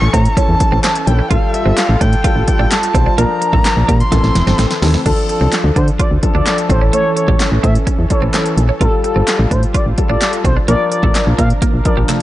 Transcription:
Already playing: analog synth pad E3 C#4 A4, erhu C#6
0.02 fm bass A1
0.13 fm bass A2, clean electric guitar C4, erhu A#5, kick, closed hi-hat
0.25 closed hi-hat
0.37 grand piano E3 C#4 A4, clean electric guitar C#4, erhu A5, kick, closed hi-hat
0.49 fm bass E2
0.60 muted clean electric guitar stroke, kick, closed hi-hat
0.72 fm bass A1, clean electric guitar C4
0.84 clean electric guitar C4, erhu A5, snare, clap, closed hi-hat
0.95 muted clean electric guitar stroke, closed hi-hat
1.07 fm bass A#1, grand piano E3 C#4 A4, erhu G5, closed hi-hat
1.19 clean electric guitar C#4
1.31 fm bass A1, grand piano G3 F4 A4, analog synth pad G3 F4 A4, clean electric guitar F4, erhu F5, kick, closed hi-hat
1.54 erhu E5, muted clean electric guitar stroke, closed hi-hat
1.66 fm bass G1, clean electric guitar C4
1.77 erhu F5, snare, clap, closed hi-hat
1.89 fm bass A1
2.01 fm bass A2, clean electric guitar D4, erhu G5, kick, closed hi-hat
2.13 closed hi-hat
2.24 grand piano G3 F4 A4, clean electric guitar F4, kick, closed hi-hat
2.36 fm bass A1
2.48 erhu G5, muted clean electric guitar stroke, kick, closed hi-hat
2.59 fm bass A1, clean electric guitar D4
2.71 erhu A5, muted clean electric guitar stroke, snare, clap, closed hi-hat
2.83 closed hi-hat
2.95 fm bass B1, grand piano G3 F4 C5, clean electric guitar C4, kick, closed hi-hat
3.06 clean electric guitar D4
3.18 fm bass A#1, grand piano F3 D4 A#4, analog synth pad F3 D4 A#4, clean electric guitar A#3, erhu A#5, closed hi-hat
3.42 muted clean electric guitar stroke, closed hi-hat
3.53 fm bass A1, clean electric guitar A3, kick
3.65 snare, clap, closed hi-hat
3.77 fm bass A#1
3.88 fm bass A#2, clean electric guitar G3, kick, closed hi-hat
4.00 erhu C6, closed hi-hat
4.12 fm bass A1, grand piano E3 C4 A4, analog synth pad E3 C4 A4, clean electric guitar A3, kick, snare, closed hi-hat
4.24 fm bass A1, snare
4.35 fm bass E1, muted clean electric guitar stroke, snare, closed hi-hat
4.47 fm bass G1, clean electric guitar C4, snare
4.59 fm bass A1, clean electric guitar C4, snare, clap, closed hi-hat
4.71 muted clean electric guitar stroke, snare, closed hi-hat
4.82 fm bass D#2, grand piano E3 C4 A4, snare, open hi-hat
4.94 clean electric guitar A3, snare
5.05 fm bass D2, grand piano F3 D4 A4, analog synth pad F3 D4 A4, clean electric guitar D4, analog synth lead A4, kick, closed hi-hat, crash
5.29 analog synth lead A4, muted clean electric guitar stroke, closed hi-hat
5.41 fm bass C2, clean electric guitar C4
5.52 snare, clap, closed hi-hat
5.64 fm bass D2
5.76 fm bass D3, clean electric guitar D4, analog synth lead C5, kick, closed hi-hat
5.88 closed hi-hat
5.99 clean electric guitar F4, analog synth lead D5, kick, closed hi-hat
6.11 fm bass D2
6.23 grand piano F3 D4 A4, muted clean electric guitar stroke, kick, closed hi-hat
6.35 fm bass D2, clean electric guitar D4, analog synth lead D5
6.46 analog synth lead D5, muted clean electric guitar stroke, snare, clap, closed hi-hat
6.58 closed hi-hat
6.70 fm bass A1, grand piano E3 C#4 A4, analog synth pad E3 C#4, clean electric guitar C4, analog synth lead C5, kick, closed hi-hat
6.81 clean electric guitar C#4
6.93 clean electric guitar A3, analog synth lead C#5, closed hi-hat
7.16 analog synth lead C#5, muted clean electric guitar stroke, closed hi-hat
7.28 fm bass A1, clean electric guitar G3, kick
7.40 snare, clap, closed hi-hat
7.52 fm bass A1
7.63 fm bass A2, clean electric guitar C4, analog synth lead E5, kick, closed hi-hat
7.75 closed hi-hat
7.87 clean electric guitar C#4, kick, closed hi-hat
7.99 fm bass E2
8.10 grand piano E3 C#4 A4, analog synth lead C#5, muted clean electric guitar stroke, kick, closed hi-hat
8.22 fm bass A1, clean electric guitar C4
8.34 clean electric guitar C4, snare, clap, closed hi-hat
8.46 muted clean electric guitar stroke, closed hi-hat
8.57 fm bass A#1, closed hi-hat
8.69 clean electric guitar C#4
8.80 fm bass A1, grand piano G3 F4 A4, analog synth pad G3 F4, clean electric guitar F4, analog synth lead A4, kick, closed hi-hat
9.04 analog synth lead A4, muted clean electric guitar stroke, closed hi-hat
9.16 fm bass G1, clean electric guitar C4
9.28 snare, clap, closed hi-hat
9.39 fm bass A1
9.51 fm bass A2, clean electric guitar D4, analog synth lead C5, kick, closed hi-hat
9.63 closed hi-hat
9.74 clean electric guitar F4, analog synth lead D5, kick, closed hi-hat
9.86 fm bass A1
9.98 grand piano G3 F4 A4, muted clean electric guitar stroke, kick, closed hi-hat
10.10 fm bass A1, clean electric guitar D4, analog synth lead D5
10.21 analog synth lead D5, muted clean electric guitar stroke, snare, clap, closed hi-hat
10.33 closed hi-hat
10.45 fm bass B1, clean electric guitar C4, analog synth lead C5, kick, closed hi-hat
10.57 clean electric guitar D4
10.68 fm bass A#1, grand piano F3 D4 A#4, analog synth pad F3 D4 A#4, clean electric guitar A#3, analog synth lead D5, closed hi-hat
10.91 analog synth lead D5, muted clean electric guitar stroke, closed hi-hat
11.03 fm bass A1, clean electric guitar A3, kick
11.15 snare, clap, closed hi-hat
11.27 fm bass A#1
11.38 fm bass A#2, clean electric guitar A#3, analog synth lead F5, kick, closed hi-hat
11.50 closed hi-hat
11.62 clean electric guitar A#3, kick, closed hi-hat
11.74 fm bass A#1
11.85 grand piano F3 D4 A#4, analog synth lead D5, muted clean electric guitar stroke, kick, closed hi-hat
11.97 fm bass A#1, clean electric guitar G3
12.09 clean electric guitar A3, clap, closed hi-hat, high tom

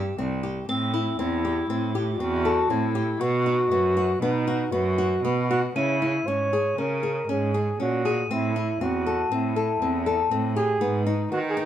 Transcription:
Already playing: cello G2, nylon-string guitar G4
0.18 cello C2, nylon-string guitar C4
0.43 nylon-string guitar G4
0.68 cello A2, clarinet C4, nylon-string guitar C4, crotales A7
0.94 nylon-string guitar E4
1.19 cello E2, nylon-string guitar C4, clarinet E4
1.45 nylon-string guitar G4
1.70 cello A2, nylon-string guitar C4
1.95 nylon-string guitar G4
2.13 clarinet F4
2.19 cello E2, nylon-string guitar C4, clarinet F#4
2.45 nylon-string guitar A4
2.70 cello A2, nylon-string guitar C4, clarinet E4
2.95 nylon-string guitar G4
3.21 cello B2, nylon-string guitar B3, clarinet F#4
3.46 nylon-string guitar D#4
3.71 cello F#2, nylon-string guitar B3
3.97 nylon-string guitar F#4
4.21 cello B2, nylon-string guitar B3, clarinet D#4
4.47 nylon-string guitar F#4
4.71 cello F#2, nylon-string guitar B3, clarinet F#4
4.98 nylon-string guitar F#4
5.24 cello B2, nylon-string guitar B3
5.50 flugelhorn F#4, nylon-string guitar F#4
5.76 cello C#3, nylon-string guitar C#4, flugelhorn E4, crotales D#7
6.02 nylon-string guitar E4
6.27 cello G#2, nylon-string guitar C#4, flugelhorn C#5
6.53 nylon-string guitar G#4
6.77 cello C#3, nylon-string guitar C#4, flugelhorn A#4
7.03 nylon-string guitar G#4
7.28 cello G#2, nylon-string guitar C#4, flugelhorn G#4
7.54 nylon-string guitar G#4
7.80 cello A#2, nylon-string guitar C#4, flugelhorn F#4
8.05 nylon-string guitar G#4, crotales D#7
8.30 cello A2, nylon-string guitar C4, flugelhorn E4
8.56 nylon-string guitar E4
8.81 cello E2, nylon-string guitar C4, flugelhorn F#4
9.07 nylon-string guitar A4
9.31 cello A2, nylon-string guitar C4, flugelhorn E4
9.56 nylon-string guitar A4
9.81 cello E2, nylon-string guitar C4
10.06 nylon-string guitar A4
10.31 cello A2, nylon-string guitar C4
10.56 nylon-string guitar G4, flugelhorn G#4
10.80 cello G#2, nylon-string guitar B3, clarinet D#4
11.06 nylon-string guitar D#4
11.32 cello D#3, nylon-string guitar B3, flugelhorn F#4
11.49 flugelhorn G#4
11.57 nylon-string guitar G#4

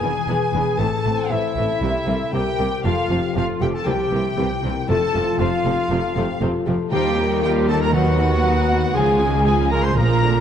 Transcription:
Already playing: harp E3, french horn section G#4, clarinet G#4, trumpet G#4, flute G#5, violin section G#5
0.02 double bass section E1, cello section E2, viola section E3 B3, harp B3, violin section B3 D4
0.28 double bass section E1, cello section E2, viola section E3 B3, violin section B3 D4, french horn section B4, harp B4
0.53 double bass section E1, cello section E2, viola section E3 B3, harp B3, violin section B3 D4
0.78 double bass section A1, cello section A2, harp A2, viola section E3 A3, violin section C4 A5, clarinet A4, french horn section A4, trumpet A4, flute A5
1.04 double bass section A1, cello section A2, viola section E3 A3, violin section C4, harp C4, french horn section C5
1.29 double bass section A1, cello section A2, viola section E3 A3, violin section C4 E5, clarinet E4, trumpet E4, harp A4, french horn section C5, flute E5
1.56 double bass section A1, cello section A2, viola section E3 A3, violin section C4, harp C4, french horn section A4
1.82 cello section C2, double bass section C2, viola section C3 G3, harp C3, violin section A#3 C4, french horn section G4
2.07 cello section C2, double bass section C2, viola section C3 G3, violin section A#3 C4, harp C4, french horn section A4
2.33 cello section C2, double bass section C2, viola section C3 G3, violin section A#3 C4 G5, clarinet G4, trumpet G4, harp G4, french horn section A#4, flute G5
2.58 cello section C2, double bass section C2, viola section C3 G3, violin section A#3 C4, harp C4
2.84 double bass section F1, cello section F2, viola section C3 F3, harp F3, violin section A3 C4 F5, clarinet F4, trumpet F4, french horn section A4, flute F5
3.09 double bass section F1, cello section F2, viola section C3 F3, violin section A3 C4, harp F4, french horn section G4
3.35 double bass section F1, cello section F2, viola section C3 F3, violin section A3 C4 F5, clarinet F4, trumpet F4, french horn section A4, harp A4, flute F5
3.61 double bass section F1, cello section F2, viola section C3 F3, violin section A3 C4 G5, harp F4, clarinet G4, trumpet G4, flute G5
3.73 trumpet A4, clarinet A4, flute A5, violin section A5
3.86 cello section C2, double bass section C2, viola section C3 E3, harp C3, violin section A#3 C4 G5, trumpet G4, french horn section G4, clarinet G4, flute G5
4.11 cello section C2, double bass section C2, viola section C3 E3, violin section A#3 C4, harp C4, french horn section E4
4.37 cello section C2, double bass section C2, viola section C3 E3, violin section A#3 C4, harp E4, french horn section G4
4.63 double bass section C2, cello section C2, viola section C3 E3, violin section A#3 C4, harp C4, french horn section A#4
4.88 double bass section F1, cello section F2, viola section C3 F3, harp F3, violin section A3 C4 A5, trumpet A4, french horn section A4, clarinet A4, flute A5
5.14 double bass section F1, cello section F2, viola section C3 F3, violin section A3 C4, french horn section F4, harp F4
5.39 double bass section F1, cello section F2, viola section C3 F3, violin section A3 C4 F5, trumpet F4, clarinet F4, harp A4, flute F5
5.65 double bass section F1, cello section F2, viola section C3 F3, violin section A3 C4, harp F4
5.89 double bass section F1, cello section F2, viola section C3 F3, violin section A3 C4, harp C4, french horn section A4
6.16 double bass section F1, cello section F2, viola section C3 F3, violin section A3 C4, harp F4, french horn section G4
6.41 double bass section F1, cello section F2, viola section C3 F3, violin section A3 C4, french horn section F4, harp A4
6.66 double bass section F1, cello section F2, viola section C3 F3, violin section A3 C4, harp F4, french horn section A4
6.91 double bass section D#2, cello section D#2, timpani D#3, harp D#3, viola section F3 G3, violin section D#4 F4 G5, clarinet G4, trumpet G4, french horn section C5, flute G5
7.16 viola section D#3 G3, violin section A#3 D#4, harp D#4, french horn section A#4
7.43 viola section F3 G3, violin section D#4 F4 G5, harp F4, clarinet G4, trumpet G4, flute G5
7.67 viola section D#3 G3, violin section A#3 D#4 A5, harp D#4, trumpet A4, clarinet A4, flute A5
7.80 trumpet A#4, clarinet A#4, flute A#5, violin section A#5
7.92 timpani D#3, harp D#3, viola section F#3, violin section D#4 F#5, trumpet F#4, clarinet F#4, french horn section B4, flute F#5
8.18 viola section D#3, violin section B3 F#4, harp D#4
8.43 viola section F#3, violin section D#4, harp F#4
8.68 viola section D#3, violin section B3 F#4, harp D#4
8.94 cello section C#2, double bass section C#2, harp C#3, viola section F3, violin section C#4 F4 G#5, french horn section G#4, clarinet G#4, trumpet G#4, flute G#5
9.19 viola section C#3 G#3, violin section G#3 G#4, harp F4
9.45 viola section F3, harp G#3, violin section C#4 F4 G#5, french horn section F4, clarinet G#4, trumpet G#4, flute G#5
9.71 viola section C#3 G#3, violin section G#3 G#4 A#5, harp F4, clarinet A#4, trumpet A#4, flute A#5
9.82 clarinet C5, trumpet C5, violin section C6, flute C6
9.96 double bass section A#1, timpani A#2, cello section A#2, harp A#2, viola section F3, violin section A#3 F4 A#5, french horn section F4, clarinet A#4, trumpet A#4, flute A#5
10.22 viola section D3 A#3, violin section C4 D4, harp D4

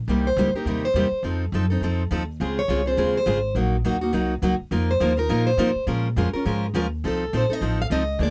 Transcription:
0.08 upright bass C2, steel-string acoustic guitar C3 G3 A#3 D#4 G4
0.27 steel-string acoustic guitar C5
0.37 upright bass C#2, steel-string acoustic guitar C3 G3 A#3 D#4 G4
0.54 steel-string acoustic guitar A#3 D#4 G4 A#4, muted upright bass stroke
0.65 upright bass D#2, steel-string acoustic guitar C3 G3 A#3 D#4 G4
0.85 steel-string acoustic guitar C5
0.94 upright bass E2, steel-string acoustic guitar C3 G3 A#3 D#4 G4
1.11 muted upright bass stroke
1.23 upright bass F2, steel-string acoustic guitar F3 C4 D#4 A4
1.52 upright bass F#2, steel-string acoustic guitar F3 C4 D#4 A4
1.70 steel-string acoustic guitar C4 D#4 A4
1.81 upright bass F2, steel-string acoustic guitar F3 C4 D#4 A4
2.11 upright bass D#2, steel-string acoustic guitar F3 C4 D#4 A4
2.40 upright bass C#2, steel-string acoustic guitar C#3 G#3 C4 F4 G#4
2.59 steel-string acoustic guitar C#5
2.68 upright bass C2, steel-string acoustic guitar C#3 G#3 C4 F4 G#4
2.86 steel-string acoustic guitar C4 F4 G#4 C5
2.97 upright bass D#2, steel-string acoustic guitar C#3 G#3 C4 F4 G#4
3.17 steel-string acoustic guitar C5
3.26 upright bass G#1, steel-string acoustic guitar C#3 G#3 C4 F4 G#4
3.55 upright bass A#1, steel-string acoustic guitar F#3 A#3 D#4 F#4
3.85 upright bass D#2, steel-string acoustic guitar F#3 A#3 D#4 F#4
4.01 steel-string acoustic guitar A#3 D#4 F#4
4.13 upright bass C2, steel-string acoustic guitar F#3 A#3 D#4 F#4
4.42 upright bass C#2, steel-string acoustic guitar F#3 A#3 D#4 F#4
4.60 muted upright bass stroke
4.71 upright bass F2, steel-string acoustic guitar F3 A#3 D#4 F4 A#4
4.91 steel-string acoustic guitar C5
5.00 upright bass D#2, steel-string acoustic guitar F3 A#3 D#4 F4 A#4
5.17 steel-string acoustic guitar D#4 F4 A#4
5.29 upright bass A#2, steel-string acoustic guitar F3 A#3 D#4 F4 A#4
5.47 steel-string acoustic guitar C5
5.57 upright bass C3, steel-string acoustic guitar F3 A#3 D#4 F4 A#4
5.75 muted upright bass stroke
5.87 upright bass A#2, steel-string acoustic guitar F3 G#3 C#4 F4 A#4
6.16 upright bass F2, steel-string acoustic guitar F3 G#3 C#4 F4 A#4
6.33 steel-string acoustic guitar C#4 F4 A#4, muted upright bass stroke
6.45 upright bass G#2, steel-string acoustic guitar F3 G#3 C#4 F4 A#4
6.74 upright bass D#2, steel-string acoustic guitar F3 G#3 C#4 F4 A#4
7.04 upright bass C2, steel-string acoustic guitar F3 C4 D#4 A4
7.33 upright bass A#1, steel-string acoustic guitar F3 C4 D#4 A4
7.37 steel-string acoustic guitar C5
7.49 steel-string acoustic guitar C4 D#4 A4 D#5, muted upright bass stroke
7.61 upright bass A1, steel-string acoustic guitar F3 C4 D#4 A4
7.82 steel-string acoustic guitar F5
7.90 upright bass C#2, steel-string acoustic guitar F3 C4 D#4 A4 D#5
8.19 upright bass D2, steel-string acoustic guitar F3 A#3 D4 G#4
8.23 steel-string acoustic guitar D5

